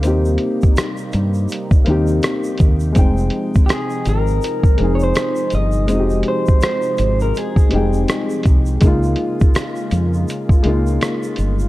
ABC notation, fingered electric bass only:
X:1
M:4/4
L:1/8
Q:"Swing 16ths" 1/4=82
K:Fm
V:1 name="Fingered electric bass" clef=bass
E,, z2 G,, z E,, z E,, | F,,, z2 A,,, z F,,, z G,,, | F,,, z2 A,,, z F,,, z C,, | D,, z2 F,, z D,, z G,,, |]